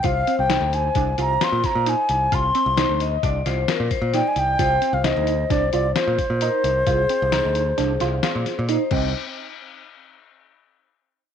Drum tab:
CC |----------|----------|----------|---------x|
HH |xxxxxxxxxx|xxxxxxxxxx|xxxxxxxxxx|xxxxxxxxx-|
SD |--o---oo--|--o--oo-o-|--o-o-o---|--o-oooo--|
BD |o---o--o--|o---o--o--|o---o--o--|o--------o|

CC |----------|
HH |----------|
SD |----------|
BD |----------|